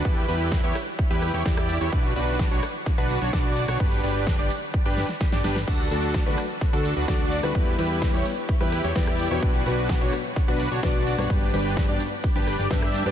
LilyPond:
<<
  \new Staff \with { instrumentName = "Supersaw synth" } { \time 4/4 \key e \dorian \tempo 4 = 128 <e' g' b'>8 <e' g' b'>8. <e' g' cis''>16 r8. <e' g' b'>8 <e' g' cis''>16 <e' g' d''>8. <e' g' cis''>16 | <d' fis' b'>8 <d' fis' b'>8. <d' fis' cis''>16 r8. <d' fis' b'>8 <d' fis' cis''>16 <d' fis' d''>8. <d' fis' cis''>16 | <d' g' b'>8 <d' g' b'>8. <d' g' d''>16 r8. <d' g' b'>8 r8 <d' g' d''>16 <d' g' b'>16 r16 | <d' fis' a'>8 <d' fis' a'>8. <d' fis' b'>16 r8. <d' fis' a'>8 <d' fis' b'>16 <d' fis' d''>8. <d' fis' b'>16 |
<e' g' b'>8 <e' g' b'>8. <e' g' cis''>16 r8. <e' g' b'>8 <e' g' cis''>16 <e' g' d''>8. <e' g' cis''>16 | <d' fis' b'>8 <d' fis' b'>8. <d' fis' cis''>16 r8. <d' fis' b'>8 <d' fis' cis''>16 <d' fis' d''>8. <d' fis' cis''>16 | <d' g' b'>8 <d' g' b'>8. <d' g' d''>16 r8. <d' g' b'>8 <d' g' d''>16 <d' g' e''>8. <d' g' d''>16 | }
  \new Staff \with { instrumentName = "Felt piano" } { \time 4/4 \key e \dorian r1 | r1 | r1 | r8 <fis a d' a'>8. <fis a d' b'>16 r8. <fis a d' a'>16 r8 <fis a d' a'>8. <g b e' b'>16~ |
<g b e' b'>8 <g b e' b'>8. <g b e' cis''>16 r8. <g b e' b'>16 r8 <g b e' b'>8. <b, fis b d' b'>16~ | <b, fis b d' b'>8 <b, fis b d' b'>8. <b, fis b d' cis''>16 r8. <b, fis b d' b'>16 r8 <b, fis b d' b'>8. <g, g b d' b'>16~ | <g, g b d' b'>8 <g, g b d' b'>8. <g, g b d' d''>16 r8. <g, g b d' b'>16 r8 <g, g b d' b'>16 r8 <g b d' b'>16 | }
  \new Staff \with { instrumentName = "Analog synth bass" } { \clef bass \time 4/4 \key e \dorian e,8 e,8. e,16 r8. e,8 e,16 e,8. e,16 | b,,8 b,,8. b,,16 r8. b,,8 b,,16 b,,8. b,,16 | g,,8 g,,8. g,,16 r8. g,,8 r8 g,,16 g,,8 | d,8 d,8. d,16 r8. d,8 d,16 d,8. d,16 |
e,8 e,8. e,16 r8. e,8 e,16 e,8. e,16 | b,,8 b,,8. b,,16 r8. b,,8 b,,16 b,,8. b,,16 | g,,8 g,,8. g,,16 r8. g,,8 g,,16 g,8. g,16 | }
  \new DrumStaff \with { instrumentName = "Drums" } \drummode { \time 4/4 bd8 hho8 <bd sn>8 <hho ss>8 bd8 <hho ss>16 sn16 <bd sn>16 ss16 hho8 | bd8 hho8 <bd sn>8 <hho ss>8 <bd sn>8 hho8 <bd sn>8 hho16 <hho ss>16 | bd16 hho16 hho8 <bd sn>8 hho8 bd8 <hho sn>16 sn16 <bd sn>16 sn16 <hho sn>16 sn16 | <cymc bd cymr>8 hho8 <bd cymr sn>8 <hho ss>8 <bd cymr sn>8 hho8 <bd cymr sn>8 hho16 <hho ss>16 |
<bd cymr>8 hho8 <bd cymr sn>8 hho8 <bd cymr>8 <hho ss>16 sn16 <bd cymr sn>16 ss16 hho8 | <bd cymr>8 hho8 <bd cymr sn>8 <hho ss>8 <bd cymr sn>8 hho8 <bd cymr sn>8 hho16 <hho ss>16 | <bd cymr>8 hho8 <bd cymr sn>8 hho8 <bd cymr>8 <hho ss>16 sn16 <bd cymr sn>16 ss16 hho8 | }
>>